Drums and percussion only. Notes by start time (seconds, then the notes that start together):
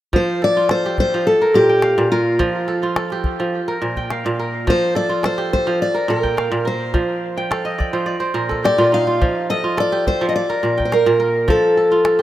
0.13 calabash thump, calabash click
0.69 calabash click
0.84 calabash click
0.98 calabash thump
1.41 calabash click
1.55 calabash click
1.82 calabash click
2.40 calabash thump, calabash click
2.96 calabash click
3.10 calabash click
3.24 calabash thump
3.68 calabash click
3.82 calabash click
3.97 calabash thump
4.10 calabash click
4.67 calabash thump, calabash click
5.24 calabash click
5.39 calabash click
5.53 calabash thump
5.96 calabash click
6.10 calabash click
6.24 calabash thump
6.38 calabash click
6.94 calabash thump, calabash click
7.52 calabash click
7.80 calabash thump
8.51 calabash thump, calabash click
8.66 calabash click
8.94 calabash click
9.22 calabash thump, calabash click
9.78 calabash click
10.07 calabash thump
10.50 calabash click
10.65 calabash click
10.80 calabash thump
10.92 calabash click
11.48 calabash thump, calabash click
12.05 calabash click